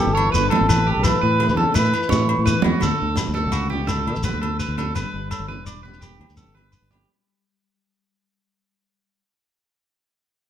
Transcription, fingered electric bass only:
0, 0, Header, 1, 2, 480
1, 0, Start_track
1, 0, Tempo, 354610
1, 949, Time_signature, 12, 3, 24, 8
1, 14201, End_track
2, 0, Start_track
2, 0, Title_t, "Fingered electric bass"
2, 0, Program_c, 0, 33
2, 93, Note_on_c, 0, 31, 86
2, 405, Note_off_c, 0, 31, 0
2, 453, Note_on_c, 0, 31, 77
2, 663, Note_off_c, 0, 31, 0
2, 826, Note_on_c, 0, 32, 80
2, 929, Note_off_c, 0, 32, 0
2, 942, Note_on_c, 0, 33, 110
2, 1250, Note_off_c, 0, 33, 0
2, 1304, Note_on_c, 0, 35, 77
2, 1510, Note_off_c, 0, 35, 0
2, 1665, Note_on_c, 0, 45, 86
2, 2013, Note_on_c, 0, 40, 87
2, 2033, Note_off_c, 0, 45, 0
2, 2223, Note_off_c, 0, 40, 0
2, 2382, Note_on_c, 0, 45, 91
2, 2588, Note_off_c, 0, 45, 0
2, 2868, Note_on_c, 0, 45, 82
2, 3173, Note_off_c, 0, 45, 0
2, 3231, Note_on_c, 0, 45, 72
2, 3433, Note_off_c, 0, 45, 0
2, 3594, Note_on_c, 0, 40, 76
2, 3693, Note_off_c, 0, 40, 0
2, 3838, Note_on_c, 0, 38, 88
2, 3935, Note_off_c, 0, 38, 0
2, 4087, Note_on_c, 0, 38, 71
2, 4282, Note_off_c, 0, 38, 0
2, 4444, Note_on_c, 0, 38, 76
2, 4688, Note_on_c, 0, 37, 77
2, 4709, Note_off_c, 0, 38, 0
2, 5509, Note_on_c, 0, 47, 79
2, 5530, Note_off_c, 0, 37, 0
2, 5610, Note_off_c, 0, 47, 0
2, 5641, Note_on_c, 0, 33, 81
2, 5839, Note_off_c, 0, 33, 0
2, 5871, Note_on_c, 0, 38, 77
2, 6276, Note_off_c, 0, 38, 0
2, 6342, Note_on_c, 0, 38, 83
2, 6649, Note_off_c, 0, 38, 0
2, 6710, Note_on_c, 0, 31, 100
2, 6810, Note_off_c, 0, 31, 0
2, 6957, Note_on_c, 0, 31, 69
2, 7156, Note_off_c, 0, 31, 0
2, 7305, Note_on_c, 0, 31, 75
2, 7549, Note_off_c, 0, 31, 0
2, 7549, Note_on_c, 0, 28, 72
2, 8383, Note_on_c, 0, 40, 79
2, 8403, Note_off_c, 0, 28, 0
2, 8487, Note_off_c, 0, 40, 0
2, 8520, Note_on_c, 0, 38, 75
2, 8718, Note_off_c, 0, 38, 0
2, 8759, Note_on_c, 0, 31, 80
2, 9161, Note_off_c, 0, 31, 0
2, 9234, Note_on_c, 0, 31, 81
2, 9537, Note_off_c, 0, 31, 0
2, 14201, End_track
0, 0, End_of_file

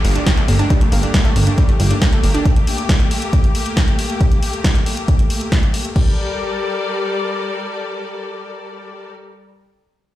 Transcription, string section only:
0, 0, Header, 1, 2, 480
1, 0, Start_track
1, 0, Key_signature, -2, "minor"
1, 0, Tempo, 437956
1, 769, Time_signature, 4, 2, 24, 8
1, 11124, End_track
2, 0, Start_track
2, 0, Title_t, "String section"
2, 0, Program_c, 0, 48
2, 0, Note_on_c, 0, 57, 79
2, 0, Note_on_c, 0, 58, 71
2, 0, Note_on_c, 0, 67, 90
2, 6486, Note_off_c, 0, 57, 0
2, 6486, Note_off_c, 0, 58, 0
2, 6486, Note_off_c, 0, 67, 0
2, 6530, Note_on_c, 0, 55, 77
2, 6530, Note_on_c, 0, 67, 70
2, 6530, Note_on_c, 0, 69, 70
2, 6530, Note_on_c, 0, 70, 71
2, 6530, Note_on_c, 0, 74, 86
2, 9980, Note_off_c, 0, 55, 0
2, 9980, Note_off_c, 0, 67, 0
2, 9980, Note_off_c, 0, 69, 0
2, 9980, Note_off_c, 0, 70, 0
2, 9980, Note_off_c, 0, 74, 0
2, 11124, End_track
0, 0, End_of_file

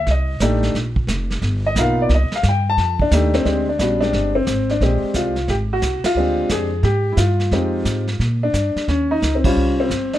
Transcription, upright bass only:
0, 0, Header, 1, 3, 480
1, 0, Start_track
1, 0, Tempo, 338983
1, 1054, Time_signature, 4, 2, 24, 8
1, 14423, End_track
2, 0, Start_track
2, 0, Title_t, "Upright bass"
2, 0, Program_c, 0, 32
2, 94, Note_on_c, 0, 36, 88
2, 560, Note_off_c, 0, 36, 0
2, 572, Note_on_c, 0, 33, 92
2, 1038, Note_off_c, 0, 33, 0
2, 1052, Note_on_c, 0, 34, 85
2, 1510, Note_off_c, 0, 34, 0
2, 1519, Note_on_c, 0, 29, 98
2, 1990, Note_off_c, 0, 29, 0
2, 2005, Note_on_c, 0, 31, 94
2, 2473, Note_off_c, 0, 31, 0
2, 2483, Note_on_c, 0, 35, 98
2, 2951, Note_off_c, 0, 35, 0
2, 2963, Note_on_c, 0, 36, 93
2, 3252, Note_off_c, 0, 36, 0
2, 3447, Note_on_c, 0, 43, 92
2, 3913, Note_off_c, 0, 43, 0
2, 3925, Note_on_c, 0, 41, 88
2, 4391, Note_off_c, 0, 41, 0
2, 4407, Note_on_c, 0, 39, 91
2, 4872, Note_off_c, 0, 39, 0
2, 4888, Note_on_c, 0, 38, 75
2, 5352, Note_off_c, 0, 38, 0
2, 5368, Note_on_c, 0, 34, 86
2, 5832, Note_off_c, 0, 34, 0
2, 5847, Note_on_c, 0, 31, 80
2, 6311, Note_off_c, 0, 31, 0
2, 6322, Note_on_c, 0, 32, 82
2, 6788, Note_off_c, 0, 32, 0
2, 6801, Note_on_c, 0, 34, 80
2, 7093, Note_off_c, 0, 34, 0
2, 7276, Note_on_c, 0, 36, 87
2, 7746, Note_off_c, 0, 36, 0
2, 7758, Note_on_c, 0, 32, 81
2, 8227, Note_off_c, 0, 32, 0
2, 8238, Note_on_c, 0, 36, 83
2, 8531, Note_off_c, 0, 36, 0
2, 8710, Note_on_c, 0, 38, 78
2, 9183, Note_off_c, 0, 38, 0
2, 9196, Note_on_c, 0, 41, 83
2, 9666, Note_off_c, 0, 41, 0
2, 9671, Note_on_c, 0, 44, 84
2, 10144, Note_off_c, 0, 44, 0
2, 10151, Note_on_c, 0, 43, 90
2, 10624, Note_off_c, 0, 43, 0
2, 10642, Note_on_c, 0, 41, 83
2, 11110, Note_off_c, 0, 41, 0
2, 11115, Note_on_c, 0, 44, 91
2, 11587, Note_off_c, 0, 44, 0
2, 11601, Note_on_c, 0, 46, 84
2, 12070, Note_off_c, 0, 46, 0
2, 12083, Note_on_c, 0, 43, 82
2, 12376, Note_off_c, 0, 43, 0
2, 12570, Note_on_c, 0, 39, 77
2, 13036, Note_off_c, 0, 39, 0
2, 13059, Note_on_c, 0, 37, 86
2, 13522, Note_off_c, 0, 37, 0
2, 13540, Note_on_c, 0, 36, 82
2, 14003, Note_off_c, 0, 36, 0
2, 14015, Note_on_c, 0, 31, 82
2, 14423, Note_off_c, 0, 31, 0
2, 14423, End_track
3, 0, Start_track
3, 0, Title_t, "Muted upright bass strokes"
3, 7124, Note_on_c, 9, 29, 35
3, 7265, Note_off_c, 9, 29, 0
3, 8553, Note_on_c, 9, 29, 40
3, 8694, Note_off_c, 9, 29, 0
3, 12398, Note_on_c, 9, 29, 37
3, 12539, Note_off_c, 9, 29, 0
3, 14423, End_track
0, 0, End_of_file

